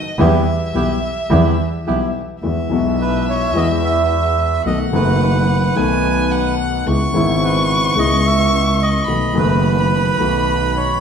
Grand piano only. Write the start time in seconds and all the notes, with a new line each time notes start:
0.19 E2 E3 G3 B3 G4
0.75 B1 B2 E3 G3 B3 G4
1.30 E2 E3 G3 B3 G4
1.87 B1 B2 E3 G3 B3 G4
2.43 E2 E3 G#3 B3 F#4
2.69 B1 B2 E3 G#3 B3 F#4
3.53 E2 E3 G#3 B3 F#4
4.65 B1 B2 D#3 A3 B3 F#4
4.91 F#1 F#2 D#3 A3 B3 F#4
5.75 B1 B2 D#3 A3 B3 F#4
6.87 C#2 C#3 G#3 B3 E4
7.12 G#1 G#2 C#3 G#3 B3
7.16 E4
7.96 C#2 C#3 G#3 B3 E4
9.07 B1 B2 D#3 A3 B3 F#4
9.33 F#1 F#2 D#3 A3 B3
9.37 F#4
10.17 B1 B2 D#3 A3 B3 F#4